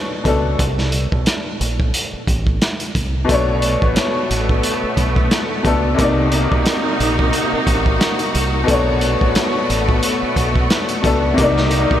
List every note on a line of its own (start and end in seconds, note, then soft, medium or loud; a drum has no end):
0.00 0.19 B2 medium
0.00 0.21 A3 medium
0.00 0.23 D4 medium
0.00 0.24 C#5 medium
0.24 0.55 C#2 medium
0.24 0.58 B2 soft
0.24 0.59 A3 soft
0.24 0.60 D4 soft
0.24 kick medium
0.24 closed hi-hat medium
0.28 0.61 A4 medium
0.59 1.06 C2 loud
0.59 kick loud
0.59 closed hi-hat loud
0.78 snare soft
0.92 closed hi-hat medium
1.12 1.25 B1 medium
1.12 kick medium
1.26 cross-stick loud
1.26 snare loud
1.26 closed hi-hat medium
1.61 1.90 A#1 loud
1.61 closed hi-hat medium
1.80 kick loud
1.94 closed hi-hat loud
2.13 muted fingered electric bass stroke medium
2.27 2.58 A1 loud
2.27 kick medium
2.27 closed hi-hat medium
2.47 kick medium
2.62 cross-stick medium
2.62 snare loud
2.62 closed hi-hat medium
2.80 closed hi-hat medium
2.95 3.25 C2 medium
2.95 kick loud
2.95 closed hi-hat medium
3.25 5.59 B2 medium
3.25 5.60 A3 medium
3.29 3.76 B1 loud
3.29 5.96 A3 medium
3.29 5.96 B3 medium
3.29 5.62 D4 medium
3.29 12.00 F#4 medium
3.29 kick loud
3.29 closed hi-hat loud
3.34 5.63 C#5 medium
3.62 closed hi-hat medium
3.82 3.95 A1 medium
3.82 kick loud
3.96 cross-stick loud
3.96 snare loud
3.96 closed hi-hat loud
4.31 4.60 A1 medium
4.31 closed hi-hat medium
4.49 kick medium
4.63 closed hi-hat loud
4.83 muted fingered electric bass stroke medium
4.97 5.27 B1 medium
4.97 kick medium
4.97 closed hi-hat medium
5.16 kick medium
5.31 cross-stick medium
5.31 snare loud
5.31 closed hi-hat medium
5.63 5.95 C#2 medium
5.63 5.98 B2 soft
5.63 5.98 A3 soft
5.63 5.99 D4 soft
5.63 kick medium
5.63 closed hi-hat medium
5.68 6.00 A4 medium
5.94 8.62 C3 medium
5.94 8.64 A#3 medium
5.99 6.45 C2 loud
5.99 8.66 C3 medium
5.99 8.66 A#3 medium
5.99 8.66 D#4 medium
5.99 8.65 D#4 medium
5.99 kick loud
5.99 closed hi-hat loud
6.04 8.67 D5 medium
6.32 closed hi-hat medium
6.52 6.65 B1 medium
6.52 kick medium
6.66 cross-stick loud
6.66 snare loud
6.66 closed hi-hat medium
7.00 7.30 A#1 loud
7.00 closed hi-hat medium
7.19 kick medium
7.33 closed hi-hat loud
7.53 muted fingered electric bass stroke soft
7.67 7.97 A1 loud
7.67 kick medium
7.67 closed hi-hat medium
7.86 kick medium
8.01 cross-stick medium
8.01 snare loud
8.01 closed hi-hat medium
8.19 closed hi-hat medium
8.35 8.65 C2 medium
8.35 closed hi-hat medium
8.64 10.98 B2 medium
8.64 10.99 A3 medium
8.68 9.15 B1 loud
8.68 11.35 A3 medium
8.68 11.35 B3 medium
8.68 11.01 D4 medium
8.68 kick loud
8.68 closed hi-hat loud
8.73 11.03 C#5 medium
9.01 closed hi-hat medium
9.21 9.34 A1 loud
9.21 kick loud
9.35 cross-stick loud
9.35 snare loud
9.35 closed hi-hat loud
9.70 10.00 A1 medium
9.70 closed hi-hat medium
9.89 kick loud
10.03 closed hi-hat loud
10.23 muted fingered electric bass stroke soft
10.36 10.67 B1 loud
10.36 kick medium
10.36 closed hi-hat medium
10.56 kick medium
10.70 cross-stick medium
10.70 snare loud
10.70 closed hi-hat medium
10.89 closed hi-hat medium
11.02 11.34 C#2 medium
11.02 11.37 B2 soft
11.02 11.38 A3 soft
11.02 11.39 D4 soft
11.02 kick medium
11.02 closed hi-hat medium
11.07 11.39 A4 medium
11.34 12.00 C3 medium
11.34 12.00 A#3 medium
11.34 12.00 D#4 loud
11.38 11.85 C2 loud
11.38 12.00 D#4 medium
11.38 kick loud
11.38 closed hi-hat loud
11.43 12.00 D5 medium
11.57 snare soft
11.71 closed hi-hat medium
11.91 12.00 B1 medium
11.91 kick loud